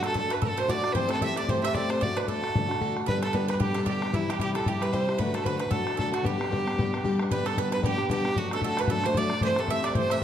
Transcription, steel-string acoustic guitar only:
0.03 A3 D4 F#4
0.14 F#3 A3 D4 F#4
0.29 A3 D4 F#4
0.41 F#3 A3 D4 F#4
0.57 A3 D4 F#4
0.68 F#3 A3 D4 F#4
0.83 A3 D4 F#4
0.95 E3 A3 C4 G4
1.10 A3 C4 G4
1.21 E3 A3 C4 G4
1.36 A3 C4 G4
1.49 E3 A3 C4 G4
1.64 A3 C4 G4
1.75 E3 A3 C4 G4
1.90 A3 C4 G4
2.02 D3 A3 D4 F#4
2.16 A3 D4 F#4
2.28 D3 A3 D4 F#4
2.42 A3 D4 F#4
2.55 D3 A3 D4 F#4
2.68 A3 D4 F#4
2.81 D3 A3 D4 F#4
2.96 A3 D4 F#4
3.07 G2 D3 G3 B3 D4 G4
3.22 G3 B3 D4 G4
3.34 G2 D3 G3 B3 D4 G4
3.48 G3 B3 D4 G4
3.60 G3 B3 D4 G4
3.76 G3 B3 D4 G4
3.87 G2 D3 G3 B3 D4 G4
4.02 G3 B3 D4 G4
4.12 C3 E3 G3 E4 G4
4.28 G3 E4 G4
4.39 C3 E3 G3 E4 G4
4.54 G3 E4 G4
4.66 E3 G3 E4 G4
4.81 G3 E4 G4
4.92 C3 E3 G3 E4 G4
5.07 G3 E4 G4
5.19 D3 F#3 A3 D4 F#4
5.34 A3 D4 F#4
5.45 D3 F#3 A3 D4 F#4
5.60 A3 D4 F#4
5.70 F#3 A3 D4 F#4
5.86 A3 D4 F#4
5.98 D3 F#3 A3 D4 F#4
6.12 A3 D4 F#4
6.23 G2 D3 G3 B3 D4 G4
6.38 G3 B3 D4 G4
6.50 G2 D3 G3 B3 D4 G4
6.67 G3 B3 D4 G4
6.77 G3 B3 D4 G4
6.93 G3 B3 D4 G4
7.05 G2 D3 G3 B3 D4 G4
7.20 G3 B3 D4 G4
7.31 G2 D3 G3 B3 D4 G4
7.45 G3 B3 D4 G4
7.57 G2 D3 G3 B3 D4 G4
7.71 G3 B3 D4 G4
7.83 G3 B3 D4 G4
7.98 G3 B3 D4 G4
8.10 G2 D3 G3 B3 D4 G4
8.24 G3 B3 D4 G4
8.36 F#3 A3 D4 F#4
8.51 A3 D4 F#4
8.64 F#3 A3 D4 F#4
8.79 A3 D4 F#4
8.90 F#3 A3 D4 F#4
9.05 A3 D4 F#4
9.17 F#3 A3 D4 F#4
9.32 A3 D4 F#4
9.43 E3 A3 C4 G4
9.58 A3 C4 G4
9.68 E3 A3 C4 G4
9.83 A3 C4 G4
9.95 E3 A3 C4 G4
10.11 A3 C4 G4

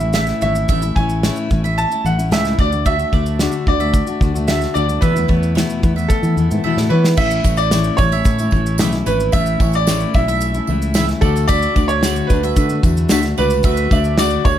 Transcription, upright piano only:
Already playing: E5
0.14 E5
0.42 E5
0.96 G#5
1.78 A5
2.06 F#5
2.33 E5
2.60 D5
2.87 E5
3.68 D5
4.48 E5
4.74 D5
5.01 B4
6.08 A4
6.89 B4
7.17 E5
7.57 D5
7.97 C#5
9.06 B4
9.32 E5
9.75 D5
10.15 E5
11.21 A4
11.48 D5
11.88 C#5
12.27 B4
13.38 B4
13.93 E5
14.19 D5
14.45 C#5

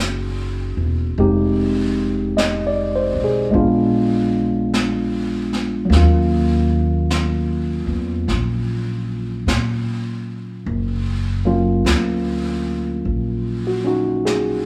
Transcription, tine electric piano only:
Already playing: A#3 C#4 D#4 F#4 G#4
1.18 G#3 C4 D#4 G4
2.37 D#5
2.67 D5
2.96 C5
3.24 G#4
3.51 G#3 B3 D4
3.55 F4
5.85 F#3
5.90 A#3 C#4
5.97 F4
11.45 F#3 A#3 C#4 F4
13.67 F#4
13.84 C#4 D#4 F#4
14.25 G#4

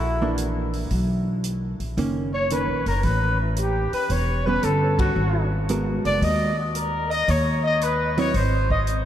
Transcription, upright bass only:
Already playing: A#1
0.91 B1
1.80 A#1
1.97 F#1
2.67 A#1
2.86 F#1
3.03 A1
3.92 muted upright bass stroke
4.09 E1
4.63 G1
5.16 G#1
6.05 F#1
6.21 D#2
7.28 D#2
8.34 G#1

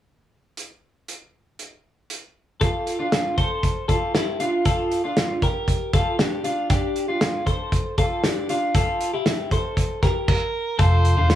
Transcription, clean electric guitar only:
2.61 F4 A4
2.99 D4 F4
3.38 A4 C5
3.88 F4 A4
4.15 E4 G4
4.40 D4 F4
4.66 F4 A4
5.04 D4 F4
5.43 G4 A#4
5.94 F4 A4
6.19 D4 G4
6.44 D4 F4
6.70 D4 G4
7.08 D4 F4
7.46 A4 C5
7.98 F4 A4
8.24 D4 G4
8.50 D4 F4
8.75 F4 A4
9.13 E4 G4
9.52 A4 C5
10.03 G4 A#4
10.79 F4 A4
11.17 D4 F4

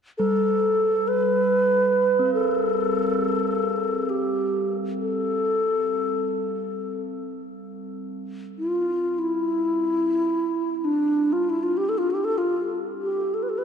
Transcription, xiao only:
0.18 A4
1.08 B4
2.34 A4
4.09 G4
5.01 A4
8.59 F4
9.19 E4
10.85 D4
11.33 F4
11.50 E4
11.63 F4
11.77 G4
11.89 A4
11.98 F4
12.10 G4
12.25 A4
12.38 F4
13.01 G4
13.34 A4
13.43 B4
13.49 A4
13.58 B4

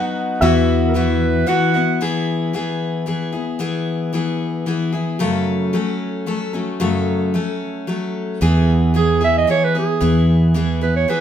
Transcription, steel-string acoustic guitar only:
Already playing: F#3 B3 D#4 F#4
0.41 E3 B3 E4 F#4
0.94 E3 B3 E4 F#4
1.47 E3 B3 E4 F#4
1.74 B3 E4 F#4
2.01 E3 B3 E4 G#4
2.53 E3 B3 E4 G#4
3.06 E3 B3 E4 G#4
3.32 B3 E4 G#4
3.59 E3 B3 E4 G#4
4.13 E3 B3 E4 G#4
4.66 E3 B3 E4 G#4
4.92 B3 E4 G#4
5.19 F#2 C#3 F#3 A3 C#4 A4
5.73 F#3 A3 C#4 A4
6.26 F#3 A3 C#4 A4
6.53 F#3 A3 C#4 A4
6.80 F#2 C#3 F#3 A3 C#4 A4
7.34 F#3 A3 C#4 A4
7.87 F#3 A3 C#4 A4
8.41 E3 B3 E4 G#4
8.94 E3 B3 E4 G#4
9.21 B3 E4 G#4
9.47 E3 B3 E4 G#4
9.75 B3 E4 G#4
10.01 E3 B3 E4 G#4
10.54 E3 B3 E4 G#4
10.81 B3 E4 G#4
11.08 E3 B3 E4 G#4

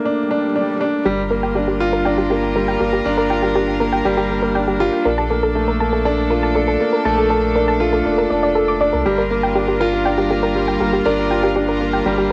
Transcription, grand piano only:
Already playing: A3 A#3 D4
0.05 D4
0.31 D4
0.56 D4
0.81 D4
1.06 G3
1.31 A#3
1.56 D4
1.80 F4
2.06 D4
2.31 A#3
2.56 G3
2.81 A#3
3.06 D4
3.31 F4
3.55 D4
3.81 A#3
4.05 G3
4.30 A#3
4.55 D4
4.80 F4
5.05 D4
5.30 A#3
5.55 A3
5.80 A#3
6.05 D4
6.30 F4
6.55 D4
6.81 A#3
7.05 A3
7.30 A#3
7.56 D4
7.80 F4
8.05 D4
8.31 D4
8.56 A4
8.81 D4
9.06 G3
9.31 A#3
9.55 D4
9.81 F4
10.06 D4
10.30 A#3
10.55 G3
10.80 A#3
11.05 D4
11.31 F4
11.56 D4
11.81 A#3
12.06 G3

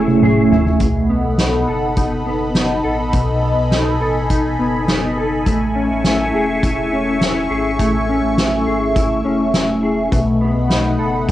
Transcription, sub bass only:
Already playing: E1
0.80 B1
1.24 B1
1.68 F#1
2.26 F#1
2.84 A1
3.13 B1
3.57 B1
4.01 A1
4.59 F#1
5.46 A1
5.90 A1
6.33 E1
6.91 E1
7.50 G#1
7.80 A1
8.23 A1
8.66 G#1
9.25 E1
10.12 B1
10.56 B1
10.99 F#1

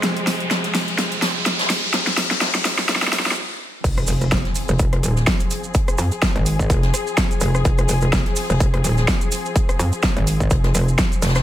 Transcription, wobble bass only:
3.84 F1
4.08 F1
4.69 F1
5.03 D#1
5.98 F2
6.36 G#1
6.70 F1
7.41 F1
7.65 F1
7.89 F1
8.50 F1
8.84 D#1
9.79 F2
10.17 G#1
10.51 F1
10.75 F1
11.22 F1

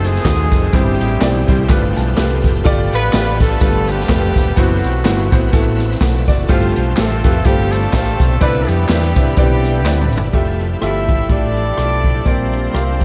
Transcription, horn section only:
0.05 G#3 C4 D#4 G#4
0.74 G3 C4 E4 G4
2.94 B3 D4 F4 B4
3.42 A3 D4 F4 A4
3.89 G3 B3 D4 G4
4.59 F#3 A3 C4 F#4
6.50 F3 A3 C4 F4
6.98 A3 C4 F4 A4
7.45 G3 C4 D4 G4
7.72 A3 C4 F4 A4
8.41 B3 D4 E4 B4
8.69 G3 B3 E4 G4
9.37 G3 B3 E4 G4
10.83 E4 G4 A4 E5
11.31 D4 G4 A4 D5
12.27 C4 F4 G4 C5

